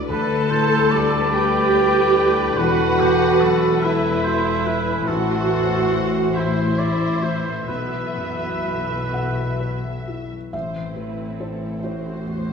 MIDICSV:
0, 0, Header, 1, 10, 480
1, 0, Start_track
1, 0, Tempo, 829876
1, 53, Time_signature, 6, 3, 24, 8
1, 2453, Tempo, 848656
1, 3893, Tempo, 903614
1, 4373, Tempo, 963082
1, 5333, Tempo, 921659
1, 5813, Tempo, 858369
1, 6926, End_track
2, 0, Start_track
2, 0, Title_t, "Violin section"
2, 0, Program_c, 0, 48
2, 54, Note_on_c, 0, 81, 95
2, 749, Note_off_c, 0, 81, 0
2, 770, Note_on_c, 0, 79, 89
2, 1484, Note_on_c, 0, 78, 93
2, 1489, Note_off_c, 0, 79, 0
2, 2208, Note_off_c, 0, 78, 0
2, 2209, Note_on_c, 0, 76, 82
2, 2910, Note_off_c, 0, 76, 0
2, 2924, Note_on_c, 0, 78, 86
2, 3631, Note_off_c, 0, 78, 0
2, 3638, Note_on_c, 0, 76, 65
2, 4366, Note_on_c, 0, 71, 56
2, 4367, Note_off_c, 0, 76, 0
2, 5078, Note_off_c, 0, 71, 0
2, 5809, Note_on_c, 0, 72, 54
2, 6036, Note_off_c, 0, 72, 0
2, 6051, Note_on_c, 0, 71, 47
2, 6292, Note_on_c, 0, 69, 44
2, 6294, Note_off_c, 0, 71, 0
2, 6525, Note_on_c, 0, 72, 54
2, 6534, Note_off_c, 0, 69, 0
2, 6926, Note_off_c, 0, 72, 0
2, 6926, End_track
3, 0, Start_track
3, 0, Title_t, "Violin section"
3, 0, Program_c, 1, 48
3, 47, Note_on_c, 1, 71, 74
3, 2900, Note_off_c, 1, 71, 0
3, 2930, Note_on_c, 1, 72, 60
3, 3626, Note_off_c, 1, 72, 0
3, 3652, Note_on_c, 1, 72, 63
3, 4359, Note_off_c, 1, 72, 0
3, 4377, Note_on_c, 1, 76, 50
3, 5685, Note_off_c, 1, 76, 0
3, 6926, End_track
4, 0, Start_track
4, 0, Title_t, "Oboe"
4, 0, Program_c, 2, 68
4, 49, Note_on_c, 2, 71, 75
4, 287, Note_on_c, 2, 72, 74
4, 295, Note_off_c, 2, 71, 0
4, 527, Note_on_c, 2, 74, 91
4, 535, Note_off_c, 2, 72, 0
4, 1490, Note_on_c, 2, 71, 73
4, 1499, Note_off_c, 2, 74, 0
4, 1732, Note_on_c, 2, 67, 66
4, 1741, Note_off_c, 2, 71, 0
4, 1969, Note_on_c, 2, 69, 59
4, 1977, Note_off_c, 2, 67, 0
4, 2211, Note_on_c, 2, 71, 70
4, 2220, Note_off_c, 2, 69, 0
4, 2447, Note_off_c, 2, 71, 0
4, 2451, Note_on_c, 2, 72, 69
4, 2685, Note_on_c, 2, 71, 68
4, 2694, Note_off_c, 2, 72, 0
4, 2924, Note_on_c, 2, 69, 70
4, 2933, Note_off_c, 2, 71, 0
4, 3553, Note_off_c, 2, 69, 0
4, 3649, Note_on_c, 2, 72, 57
4, 3891, Note_on_c, 2, 74, 62
4, 3899, Note_off_c, 2, 72, 0
4, 4125, Note_on_c, 2, 72, 54
4, 4133, Note_off_c, 2, 74, 0
4, 4363, Note_off_c, 2, 72, 0
4, 4366, Note_on_c, 2, 71, 52
4, 5431, Note_off_c, 2, 71, 0
4, 6926, End_track
5, 0, Start_track
5, 0, Title_t, "Felt piano"
5, 0, Program_c, 3, 0
5, 0, Control_c, 3, 64, 127
5, 0, Note_on_c, 3, 45, 50
5, 0, Note_on_c, 3, 57, 50
5, 0, Note_on_c, 3, 66, 54
5, 0, Note_on_c, 3, 69, 55
5, 56, Note_on_c, 3, 38, 70
5, 62, Control_c, 3, 64, 0
5, 65, Note_off_c, 3, 66, 0
5, 67, Note_off_c, 3, 45, 0
5, 67, Note_off_c, 3, 57, 0
5, 67, Note_off_c, 3, 69, 0
5, 169, Control_c, 3, 64, 127
5, 294, Note_on_c, 3, 45, 50
5, 535, Note_on_c, 3, 55, 55
5, 677, Note_off_c, 3, 45, 0
5, 771, Note_on_c, 3, 67, 52
5, 916, Note_off_c, 3, 55, 0
5, 1009, Note_on_c, 3, 71, 52
5, 1153, Note_off_c, 3, 67, 0
5, 1252, Note_on_c, 3, 67, 52
5, 1393, Note_off_c, 3, 71, 0
5, 1468, Note_off_c, 3, 38, 0
5, 1491, Note_off_c, 3, 67, 0
5, 1491, Note_on_c, 3, 40, 69
5, 1501, Control_c, 3, 64, 0
5, 1593, Control_c, 3, 64, 127
5, 1737, Note_on_c, 3, 47, 48
5, 1976, Note_on_c, 3, 54, 50
5, 2118, Note_off_c, 3, 47, 0
5, 2217, Note_on_c, 3, 64, 48
5, 2358, Note_off_c, 3, 54, 0
5, 2458, Note_on_c, 3, 66, 46
5, 2597, Note_off_c, 3, 64, 0
5, 2691, Note_on_c, 3, 64, 49
5, 2833, Note_off_c, 3, 66, 0
5, 2903, Note_off_c, 3, 40, 0
5, 2926, Note_off_c, 3, 64, 0
5, 2931, Note_on_c, 3, 33, 63
5, 2936, Control_c, 3, 64, 0
5, 3034, Control_c, 3, 64, 127
5, 3172, Note_on_c, 3, 40, 45
5, 3405, Note_on_c, 3, 57, 43
5, 3553, Note_off_c, 3, 40, 0
5, 3647, Note_on_c, 3, 64, 42
5, 3793, Note_off_c, 3, 57, 0
5, 3892, Note_on_c, 3, 72, 41
5, 4032, Note_off_c, 3, 64, 0
5, 4124, Note_on_c, 3, 64, 39
5, 4272, Note_off_c, 3, 72, 0
5, 4352, Note_off_c, 3, 33, 0
5, 4369, Note_off_c, 3, 64, 0
5, 4369, Note_on_c, 3, 35, 48
5, 4382, Control_c, 3, 64, 0
5, 4476, Control_c, 3, 64, 127
5, 4606, Note_on_c, 3, 42, 37
5, 4847, Note_on_c, 3, 54, 35
5, 4998, Note_off_c, 3, 42, 0
5, 5087, Note_on_c, 3, 64, 34
5, 5094, Note_on_c, 3, 78, 60
5, 5234, Note_off_c, 3, 54, 0
5, 5325, Note_on_c, 3, 71, 35
5, 5474, Note_off_c, 3, 64, 0
5, 5572, Note_on_c, 3, 64, 36
5, 5715, Note_off_c, 3, 71, 0
5, 5789, Note_off_c, 3, 35, 0
5, 5790, Note_off_c, 3, 78, 0
5, 5809, Note_off_c, 3, 64, 0
5, 5809, Note_on_c, 3, 33, 42
5, 5809, Note_on_c, 3, 76, 63
5, 5820, Control_c, 3, 64, 0
5, 5911, Control_c, 3, 64, 127
5, 6049, Note_on_c, 3, 57, 35
5, 6293, Note_on_c, 3, 64, 31
5, 6297, Note_on_c, 3, 72, 34
5, 6436, Note_off_c, 3, 57, 0
5, 6512, Note_off_c, 3, 64, 0
5, 6514, Note_off_c, 3, 72, 0
5, 6535, Note_on_c, 3, 64, 29
5, 6539, Note_on_c, 3, 72, 32
5, 6751, Note_off_c, 3, 64, 0
5, 6753, Note_off_c, 3, 72, 0
5, 6769, Note_on_c, 3, 40, 31
5, 6926, Note_off_c, 3, 33, 0
5, 6926, Note_off_c, 3, 40, 0
5, 6926, Note_off_c, 3, 76, 0
5, 6926, End_track
6, 0, Start_track
6, 0, Title_t, "Viola section"
6, 0, Program_c, 4, 48
6, 50, Note_on_c, 4, 69, 111
6, 748, Note_off_c, 4, 69, 0
6, 770, Note_on_c, 4, 67, 105
6, 1489, Note_off_c, 4, 67, 0
6, 1493, Note_on_c, 4, 66, 99
6, 2211, Note_on_c, 4, 64, 91
6, 2212, Note_off_c, 4, 66, 0
6, 2925, Note_off_c, 4, 64, 0
6, 2927, Note_on_c, 4, 66, 101
6, 3632, Note_off_c, 4, 66, 0
6, 3649, Note_on_c, 4, 64, 75
6, 4368, Note_on_c, 4, 59, 67
6, 4372, Note_off_c, 4, 64, 0
6, 5079, Note_off_c, 4, 59, 0
6, 5805, Note_on_c, 4, 64, 42
6, 5807, Note_on_c, 4, 60, 45
6, 6509, Note_off_c, 4, 64, 0
6, 6510, Note_off_c, 4, 60, 0
6, 6526, Note_on_c, 4, 60, 44
6, 6526, Note_on_c, 4, 66, 40
6, 6767, Note_on_c, 4, 57, 44
6, 6769, Note_off_c, 4, 60, 0
6, 6926, Note_off_c, 4, 57, 0
6, 6926, Note_off_c, 4, 66, 0
6, 6926, End_track
7, 0, Start_track
7, 0, Title_t, "French horn section"
7, 0, Program_c, 5, 60
7, 55, Note_on_c, 5, 69, 81
7, 56, Note_on_c, 5, 55, 81
7, 1468, Note_off_c, 5, 55, 0
7, 1486, Note_on_c, 5, 52, 80
7, 2904, Note_off_c, 5, 69, 0
7, 2930, Note_on_c, 5, 72, 74
7, 4278, Note_off_c, 5, 52, 0
7, 4278, Note_off_c, 5, 72, 0
7, 4369, Note_on_c, 5, 71, 59
7, 4370, Note_on_c, 5, 52, 62
7, 5614, Note_off_c, 5, 52, 0
7, 5614, Note_off_c, 5, 71, 0
7, 6926, End_track
8, 0, Start_track
8, 0, Title_t, "Harp"
8, 0, Program_c, 6, 46
8, 0, Note_on_c, 6, 57, 53
8, 0, Note_on_c, 6, 62, 58
8, 0, Note_on_c, 6, 66, 58
8, 0, Note_on_c, 6, 69, 55
8, 0, Note_on_c, 6, 78, 59
8, 57, Note_on_c, 6, 50, 65
8, 72, Note_off_c, 6, 66, 0
8, 72, Note_off_c, 6, 78, 0
8, 169, Note_off_c, 6, 62, 0
8, 176, Note_on_c, 6, 62, 52
8, 296, Note_on_c, 6, 55, 52
8, 416, Note_on_c, 6, 67, 52
8, 534, Note_on_c, 6, 74, 58
8, 646, Note_off_c, 6, 67, 0
8, 653, Note_on_c, 6, 67, 56
8, 774, Note_on_c, 6, 79, 62
8, 1007, Note_off_c, 6, 67, 0
8, 1125, Note_off_c, 6, 55, 0
8, 1132, Note_on_c, 6, 55, 53
8, 1243, Note_off_c, 6, 62, 0
8, 1250, Note_on_c, 6, 62, 57
8, 1365, Note_off_c, 6, 55, 0
8, 1372, Note_on_c, 6, 55, 54
8, 1494, Note_on_c, 6, 52, 66
8, 1509, Note_off_c, 6, 62, 0
8, 1510, Note_off_c, 6, 55, 0
8, 1510, Note_off_c, 6, 69, 0
8, 1510, Note_off_c, 6, 79, 0
8, 1511, Note_off_c, 6, 50, 0
8, 1512, Note_off_c, 6, 57, 0
8, 1975, Note_on_c, 6, 66, 55
8, 2090, Note_on_c, 6, 76, 54
8, 2212, Note_on_c, 6, 83, 54
8, 2327, Note_off_c, 6, 66, 0
8, 2334, Note_on_c, 6, 66, 49
8, 2694, Note_on_c, 6, 54, 49
8, 2783, Note_off_c, 6, 74, 0
8, 2813, Note_on_c, 6, 64, 47
8, 2929, Note_on_c, 6, 45, 58
8, 2945, Note_off_c, 6, 83, 0
8, 2946, Note_off_c, 6, 52, 0
8, 2946, Note_off_c, 6, 66, 0
8, 2947, Note_off_c, 6, 54, 0
8, 3050, Note_on_c, 6, 52, 44
8, 3166, Note_on_c, 6, 57, 42
8, 3277, Note_off_c, 6, 64, 0
8, 3405, Note_on_c, 6, 72, 47
8, 3530, Note_on_c, 6, 69, 48
8, 3644, Note_off_c, 6, 76, 0
8, 3651, Note_on_c, 6, 76, 48
8, 3766, Note_off_c, 6, 72, 0
8, 3772, Note_on_c, 6, 72, 45
8, 3897, Note_on_c, 6, 64, 44
8, 4006, Note_off_c, 6, 57, 0
8, 4013, Note_on_c, 6, 57, 39
8, 4122, Note_off_c, 6, 52, 0
8, 4128, Note_on_c, 6, 52, 41
8, 4246, Note_off_c, 6, 57, 0
8, 4252, Note_on_c, 6, 57, 38
8, 4376, Note_on_c, 6, 47, 47
8, 4390, Note_off_c, 6, 52, 0
8, 4391, Note_off_c, 6, 45, 0
8, 4392, Note_off_c, 6, 57, 0
8, 4392, Note_off_c, 6, 69, 0
8, 4392, Note_off_c, 6, 72, 0
8, 4494, Note_on_c, 6, 59, 36
8, 4616, Note_on_c, 6, 54, 34
8, 4731, Note_off_c, 6, 64, 0
8, 4736, Note_on_c, 6, 64, 36
8, 4857, Note_on_c, 6, 71, 38
8, 4977, Note_on_c, 6, 66, 40
8, 5093, Note_off_c, 6, 76, 0
8, 5099, Note_on_c, 6, 76, 38
8, 5209, Note_off_c, 6, 71, 0
8, 5215, Note_on_c, 6, 71, 37
8, 5330, Note_off_c, 6, 64, 0
8, 5336, Note_on_c, 6, 64, 38
8, 5448, Note_off_c, 6, 54, 0
8, 5454, Note_on_c, 6, 54, 37
8, 5570, Note_off_c, 6, 59, 0
8, 5576, Note_on_c, 6, 59, 34
8, 5691, Note_off_c, 6, 54, 0
8, 5697, Note_on_c, 6, 54, 35
8, 5811, Note_on_c, 6, 45, 42
8, 5831, Note_off_c, 6, 54, 0
8, 5831, Note_off_c, 6, 59, 0
8, 5831, Note_off_c, 6, 71, 0
8, 5832, Note_off_c, 6, 66, 0
8, 5833, Note_off_c, 6, 47, 0
8, 5932, Note_on_c, 6, 52, 31
8, 6055, Note_on_c, 6, 57, 33
8, 6169, Note_off_c, 6, 64, 0
8, 6175, Note_on_c, 6, 64, 34
8, 6296, Note_on_c, 6, 60, 36
8, 6410, Note_off_c, 6, 64, 0
8, 6417, Note_on_c, 6, 64, 33
8, 6649, Note_off_c, 6, 64, 0
8, 6655, Note_on_c, 6, 64, 33
8, 6764, Note_off_c, 6, 57, 0
8, 6771, Note_on_c, 6, 57, 33
8, 6883, Note_off_c, 6, 52, 0
8, 6890, Note_on_c, 6, 52, 34
8, 6926, Note_off_c, 6, 45, 0
8, 6926, Note_off_c, 6, 52, 0
8, 6926, Note_off_c, 6, 57, 0
8, 6926, Note_off_c, 6, 60, 0
8, 6926, Note_off_c, 6, 64, 0
8, 6926, Note_off_c, 6, 76, 0
8, 6926, End_track
9, 0, Start_track
9, 0, Title_t, "Cello section"
9, 0, Program_c, 7, 48
9, 54, Note_on_c, 7, 38, 78
9, 1468, Note_off_c, 7, 38, 0
9, 1488, Note_on_c, 7, 40, 73
9, 2902, Note_off_c, 7, 40, 0
9, 2926, Note_on_c, 7, 45, 68
9, 4350, Note_off_c, 7, 45, 0
9, 4366, Note_on_c, 7, 47, 56
9, 5700, Note_off_c, 7, 47, 0
9, 5806, Note_on_c, 7, 45, 48
9, 6926, Note_off_c, 7, 45, 0
9, 6926, End_track
10, 0, Start_track
10, 0, Title_t, "Double bass section"
10, 0, Program_c, 8, 48
10, 52, Note_on_c, 8, 38, 74
10, 1467, Note_off_c, 8, 38, 0
10, 1489, Note_on_c, 8, 28, 70
10, 2902, Note_off_c, 8, 28, 0
10, 2927, Note_on_c, 8, 33, 62
10, 4350, Note_off_c, 8, 33, 0
10, 4370, Note_on_c, 8, 35, 52
10, 5702, Note_off_c, 8, 35, 0
10, 5806, Note_on_c, 8, 33, 48
10, 6926, Note_off_c, 8, 33, 0
10, 6926, End_track
0, 0, End_of_file